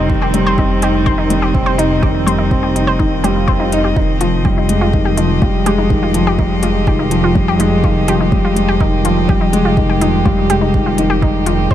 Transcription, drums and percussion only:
0.10 kick
0.34 closed hi-hat
0.58 kick
0.82 closed hi-hat
1.06 kick
1.30 closed hi-hat
1.55 kick
1.79 closed hi-hat
2.03 kick
2.28 closed hi-hat
2.51 kick
2.76 closed hi-hat
3.00 kick
3.24 closed hi-hat
3.48 kick
3.72 closed hi-hat
3.96 kick
4.21 closed hi-hat
4.45 kick
4.69 closed hi-hat
4.93 kick
5.17 closed hi-hat
5.42 kick
5.66 closed hi-hat
5.90 kick
6.14 closed hi-hat
6.39 kick
6.63 closed hi-hat
6.87 kick
7.11 closed hi-hat
7.35 kick
7.60 closed hi-hat
7.84 kick
8.08 closed hi-hat
8.32 kick
8.57 closed hi-hat
8.80 kick
9.05 closed hi-hat
9.29 kick
9.53 closed hi-hat
9.77 kick
10.01 closed hi-hat
10.26 kick
10.50 closed hi-hat
10.74 kick
10.98 closed hi-hat
11.22 kick
11.46 closed hi-hat
11.71 kick

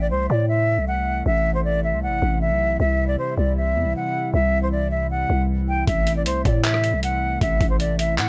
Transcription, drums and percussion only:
5.88 kick, closed hi-hat
6.07 closed hi-hat
6.26 closed hi-hat
6.45 kick, closed hi-hat
6.64 clap, closed hi-hat
6.74 cross-stick
6.84 closed hi-hat
7.03 closed hi-hat
7.41 kick, closed hi-hat
7.61 kick, closed hi-hat
7.80 closed hi-hat
7.99 closed hi-hat
8.18 clap, closed hi-hat

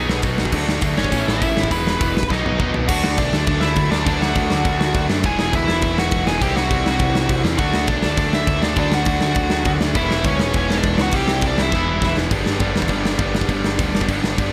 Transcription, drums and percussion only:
0.09 snare
0.22 kick, open hi-hat
0.38 snare
0.45 kick
0.52 kick, crash
0.69 snare
0.81 kick, open hi-hat
0.98 snare
1.04 kick
1.12 kick, open hi-hat
1.28 snare
1.42 kick, open hi-hat
1.57 snare
1.64 kick
1.71 kick, open hi-hat
1.87 snare
2.01 kick, open hi-hat
2.17 snare
2.23 kick
2.30 kick, snare
2.46 high tom
2.60 kick, mid tom
2.74 floor tom
2.88 kick, crash
3.04 snare
3.18 kick, crash
3.33 snare
3.47 kick, crash
3.61 snare
3.76 kick, crash
3.92 snare
4.06 kick, crash
4.22 snare
4.35 kick, crash
4.50 snare
4.65 kick, crash
4.81 snare
4.94 kick, crash
5.10 snare
5.23 kick, crash
5.39 snare
5.53 kick, crash
5.68 snare
5.82 kick, crash
5.98 snare
6.11 kick, crash
6.27 snare
6.41 kick, crash
6.57 snare
6.71 kick, crash
6.86 snare
6.99 kick, crash
7.15 snare
7.29 kick, crash
7.45 snare
7.58 kick, crash
7.74 snare
7.87 kick, crash
8.03 snare
8.17 kick, crash
8.33 snare
8.47 kick, crash
8.63 snare
8.76 kick, crash
8.92 snare
9.05 kick, crash
9.21 snare
9.35 kick, crash
9.50 snare
9.65 kick, crash
9.81 snare
9.95 kick, crash
10.11 snare
10.24 kick, crash
10.39 snare
10.53 kick, crash
10.70 snare
10.83 kick, crash
10.98 snare
11.11 kick, crash
11.28 snare
11.41 kick, crash
11.58 snare
11.72 kick, snare
12.02 kick, snare
12.17 snare
12.31 kick, crash
12.46 snare
12.60 kick, crash
12.76 snare
12.82 kick
12.88 kick, crash
13.05 snare
13.19 kick, crash
13.35 snare
13.41 kick
13.49 kick, crash
13.64 snare
13.79 kick, crash
13.95 snare
14.01 kick
14.09 kick, crash
14.24 snare
14.38 kick, crash

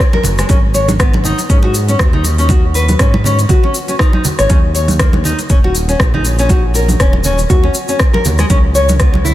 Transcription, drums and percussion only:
0.00 kick, shaker
0.13 high conga
0.23 closed hi-hat, muted conga, low conga, shaker
0.38 cross-stick, closed hi-hat, shaker
0.49 kick, closed hi-hat, muted conga, high conga, shaker
0.74 closed hi-hat, muted conga, shaker
0.89 closed hi-hat, high conga, shaker
1.00 kick, cross-stick, closed hi-hat, shaker
1.13 muted conga, high conga
1.24 low conga, shaker
1.38 closed hi-hat, muted conga, shaker
1.49 kick, closed hi-hat, shaker
1.63 muted conga
1.74 closed hi-hat, shaker
1.88 closed hi-hat, muted conga, shaker
1.99 kick, cross-stick, high conga, shaker
2.13 low conga
2.24 closed hi-hat, muted conga, shaker
2.38 closed hi-hat, shaker
2.49 kick, closed hi-hat, muted conga, high conga, shaker
2.74 closed hi-hat, muted conga, shaker
2.88 closed hi-hat, high conga, shaker
2.99 kick, cross-stick, closed hi-hat, shaker
3.14 muted conga, high conga
3.24 low conga, shaker
3.39 closed hi-hat, muted conga, shaker
3.49 kick, closed hi-hat, low conga, shaker
3.64 muted conga
3.74 closed hi-hat, shaker
3.88 closed hi-hat, muted conga, shaker
3.99 kick, cross-stick, shaker
4.13 high conga
4.25 closed hi-hat, muted conga, low conga, shaker
4.39 cross-stick, closed hi-hat, shaker
4.49 kick, closed hi-hat, muted conga, high conga, shaker
4.75 closed hi-hat, muted conga, shaker
4.88 closed hi-hat, high conga, shaker
4.99 kick, cross-stick, closed hi-hat, shaker
5.13 muted conga, high conga
5.24 low conga, shaker
5.39 closed hi-hat, muted conga, shaker
5.49 kick, closed hi-hat, shaker
5.64 muted conga
5.75 closed hi-hat, shaker
5.89 closed hi-hat, muted conga, shaker
6.00 kick, cross-stick, high conga, shaker
6.14 low conga
6.25 closed hi-hat, muted conga, shaker
6.39 closed hi-hat, shaker
6.49 kick, closed hi-hat, muted conga, high conga, shaker
6.74 closed hi-hat, muted conga, shaker
6.88 closed hi-hat, high conga, shaker
7.00 kick, cross-stick, closed hi-hat, shaker
7.13 muted conga, high conga
7.24 low conga, shaker
7.38 closed hi-hat, muted conga, shaker
7.49 kick, closed hi-hat, low conga, shaker
7.64 muted conga
7.74 closed hi-hat, shaker
7.88 closed hi-hat, muted conga, shaker
7.99 kick, cross-stick, shaker
8.14 high conga
8.25 closed hi-hat, muted conga, low conga, shaker
8.38 cross-stick, closed hi-hat, shaker
8.50 kick, closed hi-hat, muted conga, high conga, shaker
8.75 closed hi-hat, muted conga, shaker
8.89 closed hi-hat, high conga, shaker
9.00 kick, cross-stick, closed hi-hat, shaker
9.14 muted conga, high conga
9.25 low conga, shaker

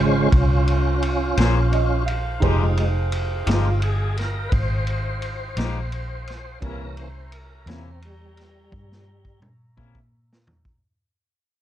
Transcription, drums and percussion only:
0.32 kick, ride
0.68 ride
1.02 ride
1.37 snare, ride
1.73 ride
2.08 ride
2.42 kick, ride
2.77 ride
3.12 ride
3.47 snare, ride
3.82 ride
4.17 snare, ride
4.52 kick, ride
4.87 ride
5.22 ride
5.57 snare, ride
5.92 ride
6.27 snare, ride
6.62 kick, ride
6.97 ride
7.32 ride
7.67 snare, ride
8.02 ride
8.37 snare, ride
8.72 kick
8.92 snare
9.25 kick
9.42 mid tom
9.78 kick
9.95 kick
10.33 snare
10.47 floor tom
10.65 kick

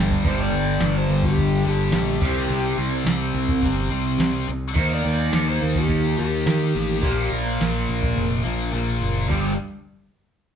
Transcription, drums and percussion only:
0.10 floor tom
0.24 kick, closed hi-hat
0.52 closed hi-hat
0.80 snare, closed hi-hat
1.09 closed hi-hat
1.23 kick
1.37 kick, closed hi-hat
1.65 closed hi-hat
1.92 snare, closed hi-hat
2.21 kick, closed hi-hat
2.50 closed hi-hat
2.78 closed hi-hat
3.06 snare, closed hi-hat
3.35 closed hi-hat
3.49 kick
3.62 kick, closed hi-hat
3.91 closed hi-hat
4.20 snare, closed hi-hat
4.48 closed hi-hat
4.75 kick, closed hi-hat
5.04 closed hi-hat
5.33 snare, closed hi-hat
5.62 closed hi-hat
5.75 kick
5.89 kick, closed hi-hat
6.18 closed hi-hat
6.47 snare, closed hi-hat
6.76 closed hi-hat
7.03 kick, closed hi-hat
7.33 closed hi-hat
7.61 snare, closed hi-hat
7.89 closed hi-hat
8.03 kick
8.18 closed hi-hat
8.46 closed hi-hat
8.74 closed hi-hat
9.02 closed hi-hat
9.30 kick, open hi-hat

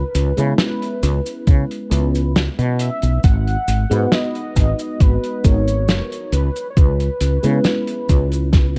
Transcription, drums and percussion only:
0.15 closed hi-hat, cabasa
0.37 closed hi-hat, cabasa
0.58 snare, closed hi-hat, cabasa
0.82 closed hi-hat
1.03 closed hi-hat, cabasa
1.26 closed hi-hat, cabasa
1.47 kick, closed hi-hat, cabasa
1.71 closed hi-hat
1.91 closed hi-hat, cabasa
2.15 closed hi-hat, cabasa
2.36 snare, closed hi-hat, cabasa
2.59 closed hi-hat
2.79 closed hi-hat, cabasa
3.02 closed hi-hat, cabasa
3.24 kick, closed hi-hat, cabasa
3.47 closed hi-hat
3.68 closed hi-hat, cabasa
3.91 closed hi-hat, cabasa
4.12 snare, closed hi-hat, cabasa
4.35 closed hi-hat
4.56 kick, closed hi-hat, cabasa
4.79 closed hi-hat, cabasa
5.00 kick, closed hi-hat, cabasa
5.24 closed hi-hat
5.44 kick, closed hi-hat, cabasa
5.68 closed hi-hat, cabasa
5.88 snare, closed hi-hat, cabasa
6.12 closed hi-hat
6.32 closed hi-hat, cabasa
6.56 closed hi-hat, cabasa
6.77 kick, closed hi-hat, cabasa
7.00 closed hi-hat
7.21 closed hi-hat, cabasa
7.43 closed hi-hat, cabasa
7.64 snare, closed hi-hat, cabasa
7.87 closed hi-hat
8.09 kick, closed hi-hat, cabasa
8.32 closed hi-hat, cabasa
8.53 kick, snare, closed hi-hat, cabasa

